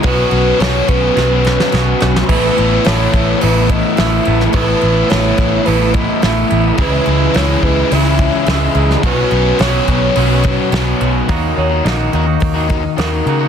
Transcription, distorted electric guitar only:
X:1
M:4/4
L:1/8
Q:1/4=107
K:Alyd
V:1 name="Distorted electric guitar"
[B,,F,B,CF]8 | [A,B,EA]8 | [A,B,EA]8 | [C,G,CE]8 |
[B,,F,B,C]8 | z8 |]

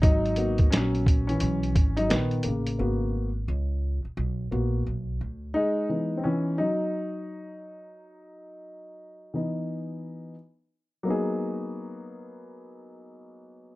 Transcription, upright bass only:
X:1
M:4/4
L:1/16
Q:"Swing 16ths" 1/4=87
K:G#m
V:1 name="Upright bass" clef=bass
G,,,4 A,,,4 B,,,2 G,,,2 A,,,2 =A,,,2 | G,,,4 C,,3 z B,,,2 A,,,2 B,,,2 =D,,2 | z16 | z16 |
z16 |]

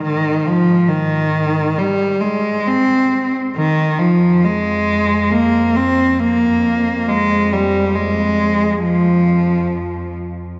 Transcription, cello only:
X:1
M:4/4
L:1/16
Q:1/4=68
K:Fm
V:1 name="Cello" clef=bass
E,2 F,2 E,4 G,2 A,2 C3 z | E,2 F,2 A,4 B,2 C2 B,4 | A,2 G,2 A,4 F,6 z2 |]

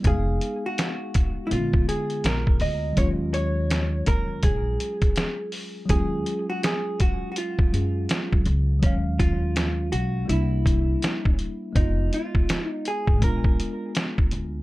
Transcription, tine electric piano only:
X:1
M:4/4
L:1/8
Q:"Swing 16ths" 1/4=82
K:Ebm
V:1 name="Tine electric piano"
[=G,A,CEf]4 [=D,A,C_DF]4 | [G,A,DF]8 | [G,A,DF]4- [G,A,DF] [G,A,DA]3 | [G,A,Df]4 [=G,B,=D=E]4 |
[A,CEF]4 [A,C=DF]4 |]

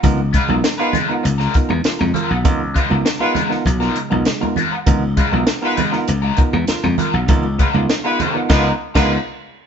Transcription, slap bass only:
X:1
M:4/4
L:1/16
Q:1/4=99
K:Dbmix
V:1 name="Slap bass" clef=bass
D,,3 C,, z4 D,,2 z _F,, z =F,, z C,, | D,,3 D,, z4 C,,2 z C,, z4 | D,,3 C,, z4 D,,2 z _F,, z =F,, z C,, | D,,3 D,, z4 D,,2 z D,,2 z3 |]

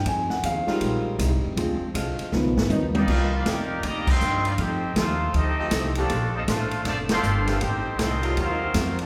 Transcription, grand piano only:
X:1
M:4/4
L:1/8
Q:"Swing" 1/4=159
K:Cm
V:1 name="Grand piano"
a ^f =f2 z4 | z8 | z8 | z8 |
z8 | z8 |]
V:2 name="Grand piano" clef=bass
z3 [G,A,E]4- [G,A,E] | [F,A,C] z3 [E,F,_C]4 | z8 | z8 |
z8 | z8 |]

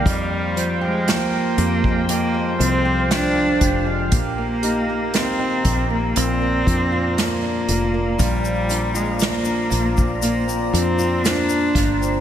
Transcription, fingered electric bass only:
X:1
M:4/4
L:1/8
Q:1/4=59
K:Bbmix
V:1 name="Fingered electric bass" clef=bass
F,,3 F,,2 C,,2 F,,, | B,,,3 B,,, B,,, F,,2 F,,, | B,,,3 B,,,2 F,,2 G,,, |]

